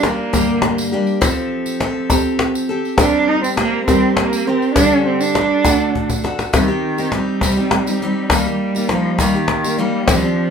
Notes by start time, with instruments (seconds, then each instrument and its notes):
0.03 steel-string acoustic guitar G3 A#3 D4 G4, cello A#3, cajon slap, tambourine
0.19 cajon slap
0.33 steel-string acoustic guitar G2 D3 G3 A#3 D4 G4, cajon bass, cajon slap, tambourine
0.62 cajon slap
0.78 tambourine
0.92 steel-string acoustic guitar G3 A#3 D4 G4
1.07 tambourine
1.21 steel-string acoustic guitar F3 C4 G4 A4, cajon bass, cajon slap, tambourine
1.36 cajon slap
1.66 cajon slap, tambourine
1.80 steel-string acoustic guitar F3 C4 G4 A4, cajon slap, tambourine
1.95 cajon slap
2.10 steel-string acoustic guitar F3 C4 G4 A4, cajon bass, cajon slap, tambourine
2.39 cajon slap
2.55 tambourine
2.69 steel-string acoustic guitar C4 G4 A4
2.85 tambourine
2.98 steel-string acoustic guitar D#3 G3 C4 G4 A#4, cello D4, cajon bass, cajon slap, tambourine
3.13 cajon slap
3.28 cello D#4
3.42 cello C4, cajon slap, tambourine
3.57 steel-string acoustic guitar G3 C4 G4 A#4, cello A#3, cajon slap, tambourine
3.73 cajon slap
3.87 steel-string acoustic guitar D#3 G3 C4 G4 A#4, cello C4, cajon bass, cajon slap, tambourine
4.17 cello A#3, cajon slap
4.33 tambourine
4.47 cello C4, steel-string acoustic guitar C4 G4 A#4
4.62 tambourine
4.75 steel-string acoustic guitar D3 G3 D4 G4 A4, cello D4, cajon bass, cajon slap, tambourine
4.92 tambourine
5.05 cello C4
5.21 cello D4, tambourine
5.35 steel-string acoustic guitar G3 D4 G4 A4, cajon slap
5.64 steel-string acoustic guitar D3 A3 D4 F#4 A4, cajon bass, cajon slap, tambourine
5.80 cajon slap
5.95 cajon bass
6.09 cajon bass, tambourine
6.24 steel-string acoustic guitar D4 F#4 A4, cajon slap
6.39 cajon slap, tambourine
6.53 steel-string acoustic guitar C3 G3 C4 D#4 G4, cello D#3, cajon bass, cajon slap, tambourine
6.68 steel-string acoustic guitar C4 D#4 G4
6.98 steel-string acoustic guitar C4 D#4 G4, tambourine
7.12 steel-string acoustic guitar G3 C4 D#4 G4, cello G3, cajon slap
7.41 steel-string acoustic guitar C3 G3 C4 D#4 G4, cajon bass, cajon slap, tambourine
7.57 steel-string acoustic guitar C4 D#4 G4
7.71 cajon slap
7.87 steel-string acoustic guitar C4 D#4 G4, tambourine
8.00 steel-string acoustic guitar G3 C4 D#4, cajon slap
8.05 steel-string acoustic guitar G4
8.30 steel-string acoustic guitar D#3 G3 A#3 D#4 G4, cello G3, cajon bass, cajon slap, tambourine
8.46 steel-string acoustic guitar A#3 D#4 G4
8.75 steel-string acoustic guitar A#3 D#4 G4, tambourine
8.88 cello F3, steel-string acoustic guitar G3 A#3 D#4 G4, cajon slap
9.19 cello D#3, steel-string acoustic guitar D#3 G3 A#3 D#4 G4, cajon bass, cajon slap, tambourine
9.35 steel-string acoustic guitar A#3 D#4 G4
9.48 cajon slap
9.64 steel-string acoustic guitar A#3 D#4 G4, tambourine
9.77 cello G3, steel-string acoustic guitar G3 A#3 D#4 G4, cajon slap
10.07 steel-string acoustic guitar D#3 G3 C4 D4 G4, cello F3, cajon bass, cajon slap, tambourine
10.22 steel-string acoustic guitar C4 D4 G4